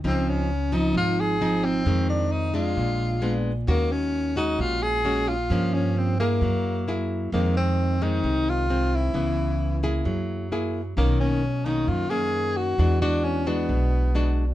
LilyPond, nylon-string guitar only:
\new Staff \with { instrumentName = "Nylon-string guitar" } { \time 4/4 \key des \major \tempo 4 = 132 << { <f c' ees'>4 r8 <f c' ees'>4. <f c' ees'>4 | <ees aes c'>4. <aes d'>4. <aes ces' d'>8 r8 | <aes des' ges'>4. <aes des' ges'>4. <aes des' ges'>8 r8 | <f bes des'>4. <bes e' aes'>4. <bes fes' aes'>4 |
<ees aes c'>4. <ees aes c'>4. <ees aes c'>4 | <fes ces'>4. <bes fes' aes'>4. <bes fes' aes'>8 r8 | <dis ais cis'>4 r8 <dis ais cis'>4 <dis ais cis'>4. | <gis d' fis'>8 <gis d' fis'>4 <gis d' fis'>4. <gis d' fis'>8 r8 | } \\ { des2 aes,2 | f,2 bes,2 | ees2 bes,2 | g,2 ges2 |
f,2 c2 | des2 ges2 | b,2 fis,2 | e2 b,2 | } >> }